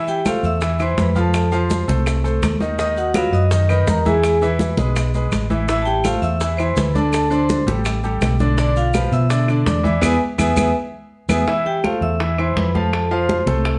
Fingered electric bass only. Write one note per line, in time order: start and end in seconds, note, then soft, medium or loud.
0.43 0.94 E2 medium
0.98 1.82 F2 medium
1.88 2.39 C2 medium
2.42 3.27 D#2 medium
3.32 3.83 F#2 medium
3.87 4.72 E2 medium
4.77 5.28 B1 medium
5.31 6.16 A1 medium
6.22 6.73 E2 medium
6.76 7.61 D2 medium
7.66 8.17 A1 medium
8.21 9.06 B1 medium
9.12 9.62 B2 medium
9.66 10.00 E2 medium
10.02 10.16 E2 medium
10.38 10.52 E2 loud
10.56 10.70 E2 medium
11.29 11.42 E2 medium
12.01 12.52 E2 medium
12.56 13.41 F2 medium
13.46 13.79 C2 medium